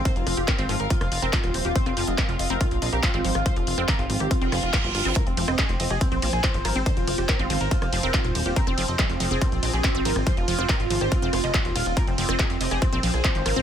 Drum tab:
RD |----------------|----------------|----------------|--x---x---x---x-|
HH |xxoxxxoxxxoxxxox|xxoxxxoxxxoxxxox|xxoxxxoxxxoxxxox|xxoxxxoxxxoxxxox|
CP |----x-------x---|----x-------x---|----x-------x---|----x-------x---|
SD |--r---r--r---r--|-r--r---r---r--r|---r---r--r---r-|r--r---r---r--r-|
BD |o---o---o---o---|o---o---o---o---|o---o---o---o---|o---o---o---o---|

RD |--x---x---x---x-|--x---x---x---x-|--x---x---x---x-|--x---x---x---x-|
HH |xxoxxxoxxxoxxxox|xxoxxxoxxxoxxxox|xxoxxxoxxxoxxxox|xxoxxxoxxxoxxxox|
CP |----x-------x---|----x-------x---|----x-------x---|----x-------x---|
SD |--r---r--r---r--|-r--r---r---r--r|---r---r--r---r-|r--r---r---r--r-|
BD |o---o---o---o---|o---o---o---o---|o---o---o---o---|o---o---o---o---|